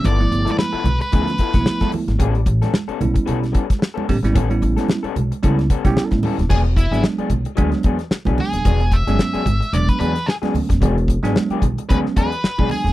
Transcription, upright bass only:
X:1
M:4/4
L:1/16
Q:"Swing 16ths" 1/4=111
K:Emix
V:1 name="Upright bass" clef=bass
=G,,,2 G,,, z3 B,,, z D,,2 z B,,, z =G,, z ^G,,, | A,,,2 A,,, z3 B,,, z B,,,2 z4 A,,, G,,, | A,,,2 A,,, z3 B,,, z C,,2 z B,,, z A,, z ^D,,, | E,,,3 G,,, z2 B,,, z D,, z E,, z2 B,,, z ^D,,, |
E,,,3 =G,,, z2 ^G,,, z E,,, z E,, z3 D,, ^D,,, | E,,,3 G,,, z2 B,,, z D,, z E,, z2 B,,, z ^D,,, |]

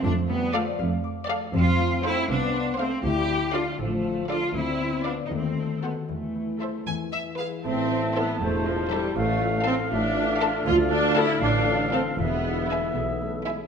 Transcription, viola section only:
X:1
M:6/8
L:1/8
Q:3/8=79
K:Ddor
V:1 name="Viola section"
z2 A z2 A | [K:Am] z2 A z2 A | z2 A z2 A | z2 B z2 A |
z2 A z2 ^G | C2 B, A, F, G, | A,2 C D3 | F D E D2 C |
B,3 z3 |]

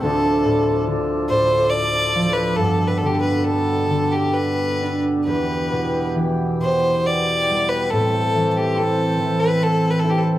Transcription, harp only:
X:1
M:3/4
L:1/8
Q:1/4=70
K:Am
V:1 name="Harp" clef=bass
D,, A,, D, A,,2 F, | G,, D, B, D,2 D | E,, B,, E, B,,2 G, | A,, E, C E,2 E |]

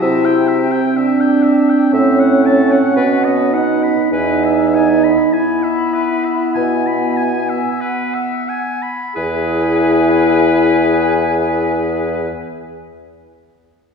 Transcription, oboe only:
X:1
M:4/4
L:1/16
Q:1/4=50
K:E
V:1 name="Oboe"
e =g e g e g e g e f a f B d f b | B e g b g e B e g b g e B e g b | B16 |]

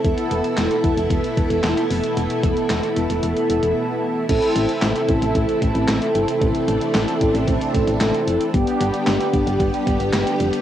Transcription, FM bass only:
X:1
M:4/4
L:1/16
Q:1/4=113
K:Am
V:1 name="FM bass" clef=bass
E,,, z E,,, z E,,, z E,,, E,,, E,,, z E,,, E,,, E,,, z F,,, z | E,,, z E,,, z E,,, z E,,, E,,, E,,, z E,,, E,,, z4 | A,,, z A,,, z A,,, z A,,, A,,, A,,, z A,,, A,,, A,,, z G,,, z | A,,, z A,,, z A,,, z A,,, A,,, A,,, z A,,, A,,, A,,, z F,,, z |
G,,, z G,,, z G,,, z G,,, G,,, G,,, z G,,, G,,, G,,, z F,,, z |]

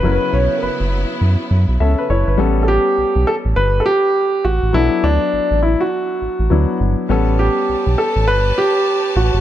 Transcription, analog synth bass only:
X:1
M:4/4
L:1/16
Q:"Swing 16ths" 1/4=102
K:Amix
V:1 name="Analog synth bass" clef=bass
F,,, z B,,, z F,,, F,,,2 z F,, z F,, B,,, C,, z F,,, G,,, | A,,,3 z B,,, B,,, z A,,, G,,,2 z4 A,,, A,,, | B,,, z D,, z A,,, A,,,2 z3 A,,, A,,, D,, z G,,, z | A,,,3 z B,,, B,,, z A,,, G,,,2 z4 A,,, G,,, |]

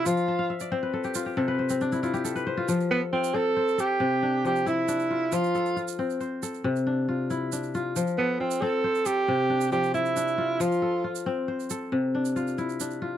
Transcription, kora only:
X:1
M:12/8
L:1/16
Q:3/8=91
K:Flyd
V:1 name="Kora"
[DF]2 a f e d c B A G F G A B c C D E F G A B c F- | F z A2 F4 c2 A4 D2 F,4 D2 F2- | F2 A2 F4 c2 A4 D2 F4 D2 F2- | F2 A2 F4 c2 A4 D2 F,4 D2 F2- |
F2 A2 F4 c2 A4 D2 F4 D2 F2 |]
V:2 name="Kora" clef=bass
F,4 z2 C4 z2 C,4 z2 E4 z2 | F,4 z2 C4 z2 C,4 z2 E4 z2 | F,4 z2 C4 z2 C,4 z2 E4 z2 | F,4 z2 C4 z2 C,4 z2 E4 z2 |
F,4 z2 C4 z2 C,4 z2 E4 z2 |]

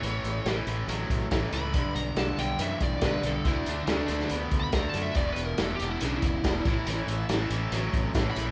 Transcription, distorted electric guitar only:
X:1
M:4/4
L:1/8
Q:1/4=140
K:Amix
V:1 name="Distorted electric guitar" clef=bass
[A,,E,]2 [A,,E,] [A,,E,] [A,,F,]2 [A,,E,] [A,,E,] | [G,,D,]2 [G,,D,] [G,,D,] [G,,E,]2 [G,,D,] [G,,D,] | [D,A,]2 [D,A,] [D,A,] [D,B,]2 [D,A,] [D,A,] | [E,,B,,]2 [E,,B,,] [E,,B,,] [E,,C,]2 [E,,B,,] [A,,E,] |
[A,,E,]2 [A,,E,] [A,,E,] [A,,F,]2 [A,,E,] [A,,E,] |]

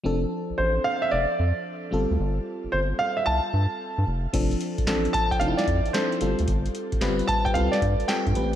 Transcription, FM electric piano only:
X:1
M:4/4
L:1/8
Q:"Swing 16ths" 1/4=112
K:Flyd
V:1 name="FM electric piano"
[F,CDA]6- [F,CDA] [G,CFA]- | [G,CFA]6- [G,CFA] z | [F,CDA]2 [F,CDA]2 [F,CD^DE]2 [F,C=DA] [G,CFA]- | [G,CFA]2 [G,CFB]2 [G,CFA]2 [G,CFA] [A,B,CGB] |]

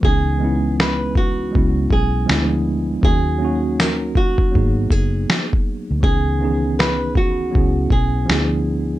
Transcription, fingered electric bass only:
X:1
M:4/4
L:1/16
Q:"Swing 16ths" 1/4=80
K:C#dor
V:1 name="Fingered electric bass" clef=bass
C,,8 C,,2 B,,,2 =D,,4 | D,,8 G,,,2 F,,,2 z3 =D,, | C,,8 C,,2 B,,,2 =D,,4 |]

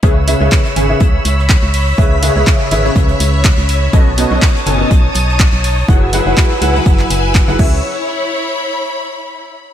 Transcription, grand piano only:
X:1
M:4/4
L:1/16
Q:"Swing 16ths" 1/4=123
K:C#m
V:1 name="Grand piano"
[C,CGBe] z [C,CGBe] [C,CGBe] z2 [C,CGBg] [C,CGBe] z8 | [C,CGBe]2 [C,CGBe] [C,CGBe]3 [C,CGBe] [C,CGBe]8- [C,CGBe] | [B,,CABd] z [B,,CABd] [B,,CABd] z2 [B,,CABg] [B,,CABd] z8 | [F,EGBf]2 [F,EGBf] [F,EGBf]3 [F,EGBf] [F,EGBf]6 [F,EGBf] [CGBe]2 |
z16 |]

